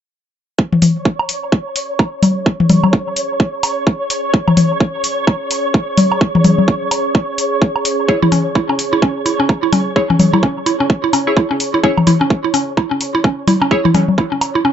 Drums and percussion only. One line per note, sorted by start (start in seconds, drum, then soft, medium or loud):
0.59 kick loud
0.73 high tom medium
0.82 open hi-hat medium
0.82 high tom medium
1.05 kick loud
1.19 high woodblock medium
1.29 open hi-hat medium
1.52 kick loud
1.76 open hi-hat medium
1.99 kick loud
1.99 high woodblock medium
2.23 open hi-hat medium
2.23 low conga medium
2.46 kick loud
2.60 high tom medium
2.69 open hi-hat medium
2.69 high tom medium
2.69 low conga medium
2.84 low conga medium
2.84 high woodblock medium
2.93 kick loud
3.16 open hi-hat medium
3.40 kick loud
3.63 open hi-hat medium
3.63 high woodblock medium
3.87 kick loud
4.10 open hi-hat loud
4.34 kick loud
4.48 high tom medium
4.48 high woodblock medium
4.57 open hi-hat medium
4.57 high tom medium
4.80 kick loud
5.04 open hi-hat medium
5.27 kick loud
5.27 high woodblock medium
5.51 open hi-hat medium
5.74 kick loud
5.98 open hi-hat medium
5.98 low conga medium
6.12 high woodblock medium
6.21 kick loud
6.35 high tom medium
6.44 open hi-hat medium
6.44 high tom medium
6.44 low conga medium
6.58 low conga medium
6.68 kick loud
6.91 open hi-hat medium
6.91 high woodblock medium
7.15 kick loud
7.38 open hi-hat medium
7.62 kick loud
7.76 high woodblock medium
7.85 open hi-hat medium
8.09 kick loud
8.22 high tom medium
8.32 open hi-hat medium
8.32 high tom medium
8.55 kick loud
8.69 high woodblock medium
8.79 open hi-hat medium
9.02 kick loud
9.26 open hi-hat medium
9.49 kick loud
9.49 high woodblock medium
9.73 open hi-hat medium
9.73 low conga medium
9.96 kick loud
10.10 high tom medium
10.19 open hi-hat medium
10.19 high tom medium
10.19 low conga medium
10.33 low conga medium
10.33 high woodblock medium
10.43 kick loud
10.66 open hi-hat medium
10.90 kick loud
11.13 open hi-hat medium
11.13 high woodblock medium
11.37 kick loud
11.60 open hi-hat medium
11.84 kick loud
11.98 high tom medium
11.98 high woodblock medium
12.07 open hi-hat medium
12.07 high tom medium
12.30 kick loud
12.54 open hi-hat medium
12.77 kick loud
12.77 high woodblock medium
13.01 open hi-hat medium
13.24 kick loud
13.48 open hi-hat medium
13.48 low conga loud
13.62 high woodblock medium
13.71 kick loud
13.85 high tom medium
13.95 open hi-hat medium
13.95 high tom medium
13.95 low conga medium
14.08 low conga medium
14.18 kick loud
14.41 open hi-hat medium
14.41 high woodblock medium